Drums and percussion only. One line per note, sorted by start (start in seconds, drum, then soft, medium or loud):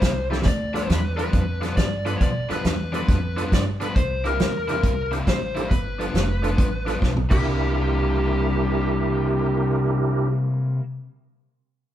0.02 kick medium
0.02 snare loud
0.02 closed hi-hat medium
0.32 snare medium
0.42 kick loud
0.42 snare medium
0.46 closed hi-hat medium
0.75 snare soft
0.75 closed hi-hat medium
0.90 snare loud
0.90 closed hi-hat medium
1.19 closed hi-hat medium
1.33 kick loud
1.33 closed hi-hat medium
1.63 snare soft
1.63 closed hi-hat medium
1.77 kick medium
1.77 snare loud
1.77 closed hi-hat medium
2.06 closed hi-hat medium
2.21 kick loud
2.21 closed hi-hat medium
2.50 snare soft
2.50 closed hi-hat medium
2.65 snare loud
2.65 closed hi-hat medium
2.94 closed hi-hat medium
3.08 kick loud
3.08 snare soft
3.08 closed hi-hat medium
3.38 closed hi-hat medium
3.52 kick medium
3.52 snare loud
3.52 closed hi-hat medium
3.81 closed hi-hat medium
3.96 kick loud
3.96 closed hi-hat medium
4.25 closed hi-hat medium
4.40 snare loud
4.40 closed hi-hat medium
4.69 closed hi-hat medium
4.83 kick loud
4.83 closed hi-hat medium
5.12 closed hi-hat medium
5.27 kick medium
5.27 snare loud
5.27 closed hi-hat medium
5.56 closed hi-hat medium
5.71 kick loud
5.71 closed hi-hat medium
6.01 closed hi-hat medium
6.15 snare loud
6.15 closed hi-hat medium
6.44 closed hi-hat medium
6.58 kick loud
6.58 closed hi-hat medium
6.88 snare soft
6.88 closed hi-hat medium
7.02 kick medium
7.02 snare medium
7.17 mid tom medium
7.31 kick loud
7.31 crash medium